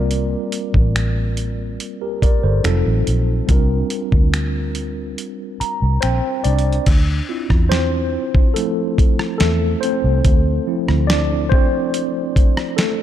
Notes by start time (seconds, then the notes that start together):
Already playing: C2 G3 A#3 C4 F4 A#4 D5
0.11 closed hi-hat
0.52 closed hi-hat
0.74 A1, kick
0.96 finger snap, closed hi-hat
1.37 closed hi-hat
1.80 closed hi-hat
2.01 G4 A#4
2.22 A#4 D5, muted fingered electric bass stroke, kick, closed hi-hat
2.43 G1 A4 C5
2.63 F1 F#3 C4 D#4 F4 A4, finger snap, closed hi-hat
2.86 A1
3.07 A#1, closed hi-hat
3.47 C2 G3 C4 D4 F4, kick, closed hi-hat
3.51 A#4
3.90 closed hi-hat
4.12 D2, kick
4.34 finger snap, closed hi-hat
4.75 closed hi-hat
5.18 closed hi-hat
5.60 A#5, muted fingered electric bass stroke, closed hi-hat
5.82 C2
6.01 A#1 C4 C5 G5, finger snap, closed hi-hat
6.44 C2 D4 D5, closed hi-hat
6.59 closed hi-hat
6.73 closed hi-hat
6.86 D2, kick, closed hi-hat, crash
7.29 C4 E4 F4
7.50 E2, kick, cross-stick
7.69 C4 C5, snare, closed hi-hat
8.35 kick
8.54 F3 A3 C4 E4 A4, closed hi-hat
8.98 kick, closed hi-hat
9.19 cross-stick
9.38 E2 A3 A4, snare, closed hi-hat
9.81 C4 C5, closed hi-hat
10.04 C2
10.25 D2, kick, closed hi-hat
10.67 F3 C4 E4
10.88 D2, cross-stick
11.07 D4 D5, snare, closed hi-hat
11.49 C4 C5, kick
11.94 closed hi-hat
12.36 kick, closed hi-hat
12.57 cross-stick
12.77 A3 A4, snare, closed hi-hat